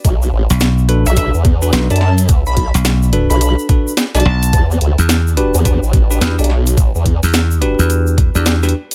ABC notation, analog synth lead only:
X:1
M:4/4
L:1/16
Q:"Swing 16ths" 1/4=107
K:Bm
V:1 name="Analog synth lead"
z6 z e e z4 a a z | z b b z4 b b z4 a3 | z16 | z16 |]